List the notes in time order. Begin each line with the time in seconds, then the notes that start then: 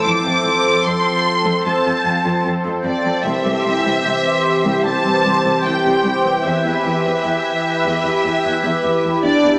Already playing: A4 C5
0.04 F2 F3 C4 D6
0.25 F2
0.45 F2
0.65 F2
0.85 F2 C6
1.45 F2
1.66 F2 A5
1.85 F2
2.05 F2
2.25 F2
2.45 F2
2.65 F2
2.85 F2 D5
3.05 F2
3.25 C2 E3 G4 C5 E5
3.45 C2
3.65 C2
3.85 C2
4.06 C2
4.66 C2
4.85 C2 A5
5.05 C2
5.26 C2
5.45 C2
5.65 C2 G5
5.85 C2
6.05 C2
6.25 C2
6.44 E2 E4 B4 E5
6.65 E2
6.85 E2
7.04 E2
7.24 E2
7.84 E2
8.05 E2
8.24 E2
8.44 E2
8.64 E2
8.85 E2
9.04 E2
9.24 E2 D4 D5
9.44 E2